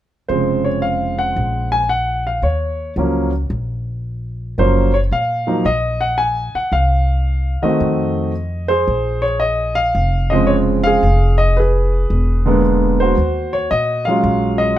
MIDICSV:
0, 0, Header, 1, 4, 480
1, 0, Start_track
1, 0, Key_signature, -5, "minor"
1, 0, Tempo, 536673
1, 255, Time_signature, 4, 2, 24, 8
1, 13225, End_track
2, 0, Start_track
2, 0, Title_t, "Grand piano"
2, 0, Program_c, 0, 0
2, 255, Note_on_c, 0, 72, 69
2, 259, Note_on_c, 0, 49, 44
2, 266, Note_on_c, 0, 53, 41
2, 271, Note_on_c, 0, 56, 39
2, 278, Note_on_c, 0, 60, 50
2, 577, Note_on_c, 0, 73, 68
2, 584, Note_off_c, 0, 72, 0
2, 733, Note_on_c, 0, 77, 75
2, 741, Note_off_c, 0, 73, 0
2, 1060, Note_on_c, 0, 78, 78
2, 1064, Note_off_c, 0, 77, 0
2, 1505, Note_off_c, 0, 78, 0
2, 1537, Note_on_c, 0, 80, 84
2, 1602, Note_off_c, 0, 49, 0
2, 1605, Note_off_c, 0, 53, 0
2, 1608, Note_off_c, 0, 56, 0
2, 1611, Note_off_c, 0, 60, 0
2, 1685, Note_off_c, 0, 80, 0
2, 1694, Note_on_c, 0, 78, 82
2, 1992, Note_off_c, 0, 78, 0
2, 2027, Note_on_c, 0, 77, 68
2, 2176, Note_on_c, 0, 73, 65
2, 2186, Note_off_c, 0, 77, 0
2, 2623, Note_off_c, 0, 73, 0
2, 2656, Note_on_c, 0, 53, 51
2, 2661, Note_on_c, 0, 54, 49
2, 2669, Note_on_c, 0, 58, 45
2, 2672, Note_on_c, 0, 61, 54
2, 2944, Note_off_c, 0, 53, 0
2, 2947, Note_off_c, 0, 54, 0
2, 2950, Note_off_c, 0, 58, 0
2, 2952, Note_off_c, 0, 61, 0
2, 4094, Note_on_c, 0, 53, 48
2, 4100, Note_on_c, 0, 54, 47
2, 4106, Note_on_c, 0, 72, 74
2, 4108, Note_on_c, 0, 58, 43
2, 4110, Note_on_c, 0, 61, 55
2, 4384, Note_off_c, 0, 53, 0
2, 4387, Note_off_c, 0, 54, 0
2, 4391, Note_off_c, 0, 58, 0
2, 4392, Note_off_c, 0, 61, 0
2, 4417, Note_on_c, 0, 73, 78
2, 4431, Note_off_c, 0, 72, 0
2, 4462, Note_off_c, 0, 73, 0
2, 4584, Note_on_c, 0, 77, 83
2, 4890, Note_on_c, 0, 53, 49
2, 4893, Note_on_c, 0, 54, 46
2, 4899, Note_on_c, 0, 58, 48
2, 4901, Note_on_c, 0, 63, 59
2, 5038, Note_off_c, 0, 53, 0
2, 5040, Note_off_c, 0, 54, 0
2, 5043, Note_off_c, 0, 58, 0
2, 5043, Note_off_c, 0, 63, 0
2, 5060, Note_on_c, 0, 75, 85
2, 5075, Note_off_c, 0, 77, 0
2, 5372, Note_on_c, 0, 78, 80
2, 5388, Note_off_c, 0, 75, 0
2, 5524, Note_off_c, 0, 78, 0
2, 5525, Note_on_c, 0, 80, 84
2, 5860, Note_on_c, 0, 78, 73
2, 5861, Note_off_c, 0, 80, 0
2, 6008, Note_off_c, 0, 78, 0
2, 6016, Note_on_c, 0, 77, 87
2, 6818, Note_on_c, 0, 51, 52
2, 6822, Note_on_c, 0, 75, 66
2, 6824, Note_on_c, 0, 66, 45
2, 6828, Note_on_c, 0, 57, 47
2, 6832, Note_on_c, 0, 60, 55
2, 6841, Note_off_c, 0, 77, 0
2, 7427, Note_off_c, 0, 51, 0
2, 7430, Note_off_c, 0, 66, 0
2, 7432, Note_off_c, 0, 57, 0
2, 7434, Note_off_c, 0, 60, 0
2, 7745, Note_off_c, 0, 75, 0
2, 7767, Note_on_c, 0, 72, 87
2, 7784, Note_on_c, 0, 68, 52
2, 8245, Note_on_c, 0, 73, 81
2, 8268, Note_off_c, 0, 72, 0
2, 8404, Note_on_c, 0, 75, 82
2, 8418, Note_off_c, 0, 73, 0
2, 8706, Note_off_c, 0, 68, 0
2, 8723, Note_on_c, 0, 77, 93
2, 8742, Note_off_c, 0, 75, 0
2, 9212, Note_on_c, 0, 75, 78
2, 9225, Note_on_c, 0, 49, 58
2, 9226, Note_off_c, 0, 77, 0
2, 9229, Note_on_c, 0, 53, 52
2, 9236, Note_on_c, 0, 56, 55
2, 9238, Note_on_c, 0, 60, 67
2, 9362, Note_on_c, 0, 73, 80
2, 9381, Note_off_c, 0, 75, 0
2, 9436, Note_off_c, 0, 73, 0
2, 9691, Note_on_c, 0, 77, 97
2, 9722, Note_on_c, 0, 68, 63
2, 9831, Note_off_c, 0, 49, 0
2, 9833, Note_off_c, 0, 53, 0
2, 9836, Note_off_c, 0, 56, 0
2, 9837, Note_off_c, 0, 60, 0
2, 10141, Note_off_c, 0, 77, 0
2, 10177, Note_on_c, 0, 75, 84
2, 10343, Note_off_c, 0, 75, 0
2, 10345, Note_on_c, 0, 71, 72
2, 10358, Note_off_c, 0, 68, 0
2, 10371, Note_on_c, 0, 68, 52
2, 11140, Note_on_c, 0, 50, 59
2, 11146, Note_on_c, 0, 56, 54
2, 11150, Note_on_c, 0, 58, 56
2, 11158, Note_on_c, 0, 59, 66
2, 11266, Note_off_c, 0, 71, 0
2, 11279, Note_off_c, 0, 68, 0
2, 11628, Note_on_c, 0, 72, 72
2, 11648, Note_on_c, 0, 66, 50
2, 11747, Note_off_c, 0, 50, 0
2, 11751, Note_off_c, 0, 56, 0
2, 11753, Note_off_c, 0, 58, 0
2, 11756, Note_off_c, 0, 59, 0
2, 12102, Note_on_c, 0, 73, 76
2, 12117, Note_off_c, 0, 72, 0
2, 12249, Note_off_c, 0, 73, 0
2, 12260, Note_on_c, 0, 75, 86
2, 12557, Note_off_c, 0, 66, 0
2, 12557, Note_off_c, 0, 75, 0
2, 12568, Note_on_c, 0, 77, 80
2, 12586, Note_on_c, 0, 54, 54
2, 12592, Note_on_c, 0, 56, 51
2, 12597, Note_on_c, 0, 61, 47
2, 12603, Note_on_c, 0, 65, 61
2, 13042, Note_on_c, 0, 75, 79
2, 13067, Note_off_c, 0, 77, 0
2, 13190, Note_off_c, 0, 54, 0
2, 13193, Note_off_c, 0, 56, 0
2, 13195, Note_off_c, 0, 61, 0
2, 13199, Note_off_c, 0, 65, 0
2, 13215, Note_off_c, 0, 75, 0
2, 13225, End_track
3, 0, Start_track
3, 0, Title_t, "Upright bass"
3, 0, Program_c, 1, 32
3, 262, Note_on_c, 1, 29, 68
3, 1183, Note_off_c, 1, 29, 0
3, 1219, Note_on_c, 1, 34, 70
3, 2142, Note_off_c, 1, 34, 0
3, 2167, Note_on_c, 1, 39, 67
3, 2618, Note_off_c, 1, 39, 0
3, 2648, Note_on_c, 1, 37, 68
3, 3098, Note_off_c, 1, 37, 0
3, 3130, Note_on_c, 1, 34, 69
3, 4058, Note_off_c, 1, 34, 0
3, 4096, Note_on_c, 1, 30, 70
3, 4544, Note_off_c, 1, 30, 0
3, 4572, Note_on_c, 1, 46, 64
3, 5022, Note_off_c, 1, 46, 0
3, 5054, Note_on_c, 1, 34, 70
3, 5820, Note_off_c, 1, 34, 0
3, 6008, Note_on_c, 1, 36, 66
3, 6777, Note_off_c, 1, 36, 0
3, 6978, Note_on_c, 1, 41, 73
3, 7903, Note_off_c, 1, 41, 0
3, 7938, Note_on_c, 1, 34, 69
3, 8863, Note_off_c, 1, 34, 0
3, 8896, Note_on_c, 1, 29, 73
3, 9822, Note_off_c, 1, 29, 0
3, 9862, Note_on_c, 1, 29, 72
3, 10785, Note_off_c, 1, 29, 0
3, 10824, Note_on_c, 1, 28, 72
3, 11745, Note_off_c, 1, 28, 0
3, 11781, Note_on_c, 1, 39, 71
3, 12226, Note_off_c, 1, 39, 0
3, 12262, Note_on_c, 1, 46, 66
3, 12707, Note_off_c, 1, 46, 0
3, 12732, Note_on_c, 1, 34, 79
3, 13225, Note_off_c, 1, 34, 0
3, 13225, End_track
4, 0, Start_track
4, 0, Title_t, "Muted upright bass strokes"
4, 5855, Note_on_c, 9, 29, 32
4, 5944, Note_off_c, 9, 29, 0
4, 6820, Note_on_c, 9, 29, 34
4, 6910, Note_off_c, 9, 29, 0
4, 13225, End_track
0, 0, End_of_file